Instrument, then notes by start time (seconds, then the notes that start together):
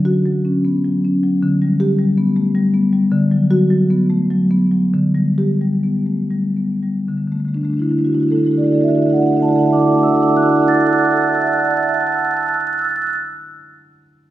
marimba
Already playing: D3 F#3
0.05 F#4
0.26 F#3
0.45 C#4
0.65 B3
0.85 F#3
1.05 C#4
1.23 F#3
1.42 D3
1.62 G3
1.80 G4
1.99 G3
2.18 B3
2.36 A3
2.55 G3
2.74 B3
2.93 G3
3.12 D3
3.31 F#3
3.51 F#4
3.70 F#3
3.90 B3
4.10 A3
4.31 F#3
4.51 B3
4.71 F#3
4.94 D3
5.15 G3
5.38 G4
5.61 G3
5.83 B3
6.06 A3
6.30 G3
6.57 B3
6.83 G3
7.09 D3
7.17 D3
7.28 D3
7.32 D3 A3
7.40 A3
7.45 D3 A3
7.54 D3 A3 D4
7.61 D3 A3 D4
7.70 D3 A3 D4
7.77 D4 E4
7.82 D3 A3 D4
7.89 D3 A3 D4 E4
7.98 D3 A3 D4 E4
8.05 A3 D4 E4 F#4
8.10 D3 F#4
8.15 D3 A3 D4 E4
8.20 A3 D4 E4 F#4
8.27 D3 D4 F#4 A4
8.32 D3 A3 E4
8.36 A3 D4 E4 F#4 A4
8.43 D3 D4 E4 F#4 A4
8.48 A3 F#4 A4
8.52 D3 D4 E4
8.57 A3 D4 F#4 A4 D5
8.63 D3 A3 E4 F#4 D5
8.67 D4 E4 A4
8.72 D3 A3 D4 F#4 A4 D5
8.78 D3 A3 E4 F#4 A4 D5
8.83 D4 D5 E5
8.87 D3 A3 D4 E4 F#4 A4 E5
8.94 D3 E4 F#4 A4 D5 E5
8.98 A3 D4 F#4 A4 D5
9.03 A3 D4 E4 E5
9.07 D3 E4 F#4 A4 D5 E5
9.13 D3 A3 D4 A4 D5 E5 F#5
9.18 E4 F#4 A4 F#5
9.22 D3 A3 D4 F#4 D5 E5
9.26 D4 E4 A4 E5 F#5
9.31 D3 A3 E4 F#4 D5 F#5
9.35 D4 A4 D5 E5
9.39 D3 A3 E4 F#4 A4 F#5 A5
9.44 D4 D5 E5 F#5
9.48 D3 A3 D4 E4 F#4 A4 D5 E5 A5
9.53 D3 A3 F#4 A4 E5 F#5 A5
9.58 D4 E4 A4 D5 F#5 A5
9.63 D3 A3 F#4 D5 E5 F#5
9.67 A3 D4 E4 F#4 A4 E5 A5
9.72 D3 D4 E4 D5 E5 F#5 A5 D6
9.77 A3 F#4 A4 D5 F#5 A5 D6
9.82 D3 D4 E4 F#4 A4 E5 F#5
9.86 A3 D4 E4 D5 E5 A5 D6
9.91 D3 F#4 A4 D5 E5 F#5 A5 D6
9.96 A3 D4 E4 A4 F#5 D6
10.00 D3 A3 F#4 D5 E5 A5 E6
10.04 D4 E4 F#4 A4 E5 F#5 A5 D6
10.09 D3 A3 D5 F#5 E6
10.13 D4 E4 F#4 A4 D5 E5 F#5 A5 D6 E6
10.19 A3 D4 E4 F#4 A4 D5 E5 F#5 A5 D6 E6
10.26 A3 D4 F#4 A4 E5 F#5 A5 D6 E6
10.30 E4 D5 A5 D6
10.35 A3 D4 E4 F#4 A4 D5 E5 F#5 E6 F#6
10.40 A4 E5 F#5 A5 D6 E6 F#6
10.44 D4 E4 F#4 D5 A5 D6
10.48 F#4 A4 E5 F#5 E6 F#6
10.52 D4 E4 D5 F#5 A5 D6 F#6
10.56 F#4 A4 D5 E5 A5 D6 E6
10.61 D4 E4 A4 E5 F#5 E6 F#6
10.66 F#4 D5 E5 F#5 A5 D6 E6 F#6 A6
10.70 E4 A4 F#5 D6
10.74 E4 F#4 D5 E5 A5 E6 F#6 A6
10.78 A4 D5 E5 F#5 A5 D6 E6 F#6 A6
10.82 E4 F#4 A4 D6
10.87 F#4 D5 E5 F#5 A5 E6 F#6 A6
10.92 A4 D5 F#5 A5 D6 F#6 A6
10.96 F#4 A4 E5 F#5 E6 F#6 A6
11.01 D5 E5 A5 D6 E6 F#6
11.05 F#4 A4 D5 F#5 A5 A6
11.09 F#4 E5 F#5 E6 F#6 A6
11.13 A4 D5 E5 A5 E6 F#6 A6
11.19 A4 F#5 A5 E6 F#6
11.23 D5 E5 F#5 A5 A6
11.27 A4 D5 E5 E6 F#6 A6
11.32 A4 F#5 A5 E6 F#6 A6
11.37 D5 E5 F#5 A5 F#6
11.41 E5 F#5 E6 A6
11.45 D5 A5 E6 F#6 A6
11.49 D5 E5 F#5 F#6
11.53 E5 A5 E6 A6
11.58 D5 F#5 A5 E6 F#6 A6
11.63 E5 F#5 F#6 A6
11.67 D5 E5 F#5 A5 E6 F#6
11.71 A5 E6 A6
11.76 E5 F#5 F#6 A6
11.81 E5 F#5 A5 E6 F#6 A6
11.87 E5 F#5 A5 E6 F#6 A6
11.94 F#5 A5 E6 F#6 A6
12.00 F#5 A5 E6 F#6 A6
12.07 F#5 A5 E6 F#6 A6
12.12 A5 E6 F#6 A6
12.16 F#5 A5 E6 F#6 A6
12.23 F#5 F#6 A6
12.27 A5 E6 F#6
12.31 A5 E6 A6
12.37 A5 F#6 A6
12.41 E6 F#6 A6
12.46 A5 E6 F#6 A6
12.53 A5 E6 F#6 A6
12.60 E6 F#6 A6
12.67 E6 F#6 A6
12.73 E6 F#6 A6
12.78 E6 F#6 A6
12.84 F#6 A6
12.89 E6 F#6 A6
12.96 E6 F#6 A6
13.02 E6 F#6 A6
13.07 E6 F#6 A6
13.13 F#6 A6